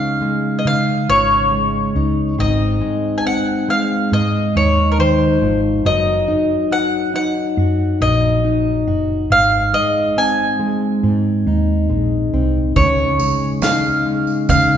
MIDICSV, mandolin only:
0, 0, Header, 1, 2, 480
1, 0, Start_track
1, 0, Key_signature, -5, "major"
1, 0, Tempo, 865551
1, 1322, Time_signature, 4, 2, 24, 8
1, 8193, End_track
2, 0, Start_track
2, 0, Title_t, "Mandolin"
2, 0, Program_c, 0, 25
2, 0, Note_on_c, 0, 77, 74
2, 325, Note_on_c, 0, 75, 49
2, 340, Note_off_c, 0, 77, 0
2, 363, Note_off_c, 0, 75, 0
2, 373, Note_on_c, 0, 77, 74
2, 607, Note_on_c, 0, 73, 84
2, 615, Note_off_c, 0, 77, 0
2, 1329, Note_off_c, 0, 73, 0
2, 1331, Note_on_c, 0, 75, 76
2, 1746, Note_off_c, 0, 75, 0
2, 1762, Note_on_c, 0, 80, 64
2, 1801, Note_off_c, 0, 80, 0
2, 1811, Note_on_c, 0, 78, 76
2, 2050, Note_off_c, 0, 78, 0
2, 2052, Note_on_c, 0, 77, 74
2, 2271, Note_off_c, 0, 77, 0
2, 2292, Note_on_c, 0, 75, 80
2, 2531, Note_off_c, 0, 75, 0
2, 2533, Note_on_c, 0, 73, 81
2, 2724, Note_off_c, 0, 73, 0
2, 2726, Note_on_c, 0, 70, 52
2, 2763, Note_off_c, 0, 70, 0
2, 2772, Note_on_c, 0, 72, 76
2, 3104, Note_off_c, 0, 72, 0
2, 3251, Note_on_c, 0, 75, 81
2, 3729, Note_on_c, 0, 78, 86
2, 3740, Note_off_c, 0, 75, 0
2, 3949, Note_off_c, 0, 78, 0
2, 3969, Note_on_c, 0, 78, 80
2, 4422, Note_off_c, 0, 78, 0
2, 4446, Note_on_c, 0, 75, 85
2, 5168, Note_on_c, 0, 77, 89
2, 5185, Note_off_c, 0, 75, 0
2, 5401, Note_on_c, 0, 75, 85
2, 5411, Note_off_c, 0, 77, 0
2, 5646, Note_on_c, 0, 80, 78
2, 5648, Note_off_c, 0, 75, 0
2, 6580, Note_off_c, 0, 80, 0
2, 7077, Note_on_c, 0, 73, 77
2, 7559, Note_on_c, 0, 77, 79
2, 7573, Note_off_c, 0, 73, 0
2, 8017, Note_off_c, 0, 77, 0
2, 8039, Note_on_c, 0, 77, 83
2, 8193, Note_off_c, 0, 77, 0
2, 8193, End_track
0, 0, End_of_file